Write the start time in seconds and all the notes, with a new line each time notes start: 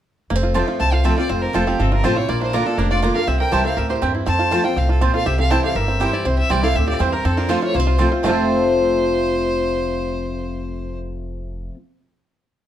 0.30 F1 F2 A#3
0.35 C4
0.43 F4
0.54 F3 A3 C4 F4 C5 A5
0.68 F4
0.80 C2 C3 C4 C5 A5
0.92 F4 A4 F5
1.04 F3 A3 C4 F4 A4 C5 E5 A5
1.17 C4 F4 D5
1.29 F1 F2 C4 F4 C5
1.42 D4 A#4
1.53 F1 F3 A3 C4 F4 A4 C5 A5
1.67 A#3 C4 F4 G4
1.79 G1 C3 C4 F4 A4
1.92 D4 F4 A#4
2.04 A1 F3 A3 C4 F4 C5 A5
2.16 C4 E4 F4 C#5
2.28 A#1 A#2 A#3 F4 D5
2.42 D4 E4 C5
2.53 D3 A#3 D4 F4 A#4 D5 A#5
2.66 C4 D4 F4 A4
2.78 F1 F2 A#3 D4 A#4
2.90 F4 D5
3.02 D3 A#3 D4 F4 D5 A#5
3.14 D4 F4 A4 A#4 F5
3.27 C2 C3 C4 G4 E5
3.40 A#4 G5
3.51 C2 E3 G3 C4 E4 G4 C5 G5 A5
3.64 C4 E4 A4 F5
3.77 D2 A2 G4 A#4 E5
3.89 E4 G4 C5
4.02 E2 G2 C4 E4 C5 G5
4.15 E4
4.26 F2 C4 C5 A5
4.39 F4
4.51 F3 A3 C4 F4 C5 A5
4.64 C4 F4 A#4 G5
4.76 C2 A2 C4 A4 F5
4.89 F4 A4, muted resonator guitar played with a steel bar stroke
5.01 A#2 C4 F4 C5 A5
5.14 F4 A4 F5
5.26 C2 C3 G4 E5
5.39 C4 A4 F5
5.50 E3 G3 C4 E4 C5 G5 A5
5.64 G4 A4 F5
5.75 G1 G2 G4 A#4 E5
5.88 C4
6.00 E3 G3 C4 E4 G4 C5 G5
6.13 E4 F4 D5
6.25 C2 C3 C4 E4 C5
6.38 G4 E5
6.50 C2 E3 G3 C4 E4 G4 C5 D5 G5
6.63 C4 E4 A4 F5
6.75 D2 A2 C4 G4 E5
6.88 F4 G4 D5
6.99 E2 G2 C4 E4 C5 G5
7.12 D4 A#4
7.25 F2 C4 A4
7.37 D4 F4 A#4
7.49 F3 A3 C4 F4 C5 A5
7.61 E4 F4 C#5
7.74 C2 C3 A#3 F4 C5
7.80 C4
7.87 F4
7.98 F3 A3 C4 F4 C5 A5
8.11 C4 F4
8.23 F1 F2 C3 F3 A3 C4 F4 C5 A5
8.27 F4 A4